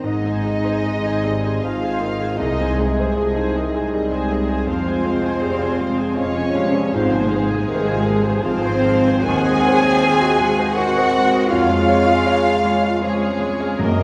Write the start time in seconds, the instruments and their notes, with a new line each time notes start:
0.04 double bass section G#1, grand piano G#2, french horn section G#3, cello section D#4, viola section G#4 D#5, clarinet D#5, violin section D#5, flute section D#5
0.22 grand piano C4, viola section C5 G#5
0.43 grand piano G#4, viola section G#4 D#5
0.64 grand piano C5, viola section C5 G#5
0.84 double bass section G#1, bassoon G#3, viola section G#4 D#5, grand piano G#4
1.03 grand piano D#4, viola section C5 G#5
1.23 bassoon G3, grand piano C4, viola section G#4 D#5
1.42 grand piano G#4, viola section C5 G#5
1.62 double bass section G#1, bassoon F3, french horn section G#3, grand piano D#4, cello section F4, viola section G#4 D#5, violin section F5, flute section F5, clarinet F5
1.80 grand piano G#4, viola section C5 G#5
2.00 bassoon D#3, grand piano C4, viola section G#4 D#5
2.20 grand piano G#4, viola section C5 G#5
2.39 grand piano C2, double bass section C2, bassoon G#3, french horn section G#3, cello section D#4, viola section G#4 D#5, violin section D#5, clarinet D#5, flute section D#5
2.59 grand piano C4, viola section C5 G#5
2.78 french horn section C3, cello section G#3, violin section G#4, viola section G#4 D#5, grand piano G#4, flute section G#4, clarinet G#4
2.97 viola section C5 G#5, grand piano C5
3.17 double bass section C2, bassoon F3, grand piano G#4, viola section G#4 D#5
3.35 grand piano D#4, viola section C5 G#5
3.55 bassoon D#3, grand piano C4, viola section G#4 D#5
3.74 grand piano G#4, viola section C5 G#5
3.92 double bass section C2, french horn section C3, bassoon G3, cello section G#3, grand piano D#4, violin section G#4, viola section G#4 D#5, clarinet G#4, flute section G#4
4.11 grand piano G#4, viola section C5 G#5
4.30 grand piano C4, viola section G#4 D#5
4.49 grand piano G#4, viola section C5 G#5
4.67 double bass section F1, grand piano F2, bassoon F3, french horn section F3, cello section C4, viola section F4 F5, violin section C5, flute section C5, clarinet C5
4.86 grand piano G#3, viola section G#4 G#5
5.04 bassoon G#3, viola section F4 F5, grand piano G#4
5.22 grand piano F4, viola section G#4 G#5
5.41 double bass section F1, bassoon G3, viola section F4 F5, grand piano G#4
5.59 grand piano F4, viola section G#4 G#5
5.79 bassoon F3, grand piano G#3, viola section F4 F5
5.98 grand piano G#4, viola section G#4 G#5
6.16 double bass section F1, french horn section F3, bassoon G#3, cello section C#4, grand piano F4, viola section F4 F5, flute section C#5, violin section C#5
6.20 clarinet C#5
6.36 grand piano G#4, viola section G#4 G#5
6.54 bassoon G3, grand piano G#3, viola section F4 F5
6.74 viola section G#4 G#5, grand piano G#4
6.92 double bass section G#1, grand piano G#2, french horn section F3, bassoon F3, cello section C4, viola section G#4 F5, flute section C5, violin section C5, clarinet C5
7.12 grand piano G#3, viola section C5 G#5
7.29 french horn section C3, cello section G#3, violin section G#4, viola section G#4 F5, clarinet G#4, flute section G#4
7.35 grand piano C5
7.49 viola section C5 G#5
7.55 grand piano G#4
7.67 double bass section G#1, bassoon D#3, viola section G#4 F5
7.74 grand piano C5
7.85 viola section C5 G#5
7.91 grand piano F4
8.04 bassoon F3, viola section G#4 F5
8.10 grand piano G#3
8.22 viola section C5 G#5
8.29 grand piano C5
8.41 french horn section F3, cello section C4, viola section G#4 F5, violin section C5, clarinet C5, flute section C5
8.45 grand piano F4
8.61 viola section C5 G#5
8.66 grand piano C5
8.82 grand piano G#3, viola section G#4 F5
9.03 viola section C5 G#5
9.08 grand piano C5
9.22 double bass section D#2, bassoon D#3, french horn section C4, cello section G#4, viola section C5 F#5, violin section G#5, clarinet G#5, flute section G#5
9.28 grand piano D#2
9.43 viola section D#5
9.48 grand piano G#3
9.62 bassoon F#3, viola section F#5
9.68 grand piano C5
9.81 grand piano G#4, viola section D#5
10.00 bassoon F3, viola section C5, grand piano C5
10.19 grand piano F#4, viola section D#5
10.38 grand piano G#3, viola section F#5
10.57 grand piano C5, viola section D#5
10.72 bassoon D#3, french horn section C4, cello section F#4, violin section F#5, clarinet F#5, flute section F#5
10.77 grand piano F#4, viola section C5
10.95 grand piano C5, viola section D#5
11.13 viola section F#5
11.18 grand piano G#3
11.32 grand piano C5, viola section D#5
11.48 double bass section F2, grand piano F2, bassoon C#3, french horn section G#3, cello section F4, viola section C#5 F5, clarinet F5, violin section F5, flute section F5
11.69 grand piano G#3, viola section F5
11.89 viola section C#5, grand piano C#5
12.07 grand piano G#4, viola section F5
12.27 grand piano C#5, viola section C#5
12.45 grand piano F4, viola section F5
12.65 grand piano G#3, viola section C#5
12.83 grand piano C#5, viola section F5
13.01 french horn section C#3, bassoon F3, cello section G#3, grand piano F4, violin section G#4, flute section G#4, clarinet G#4, viola section C#5
13.21 grand piano C#5, viola section F5
13.40 grand piano G#3, viola section C#5
13.60 grand piano C#5, viola section F5
13.79 grand piano F#2, french horn section D#3, bassoon D#3, violin section A#4, clarinet A#4, viola section A#4 D#5, flute section A#4
13.83 double bass section F#2, cello section A#3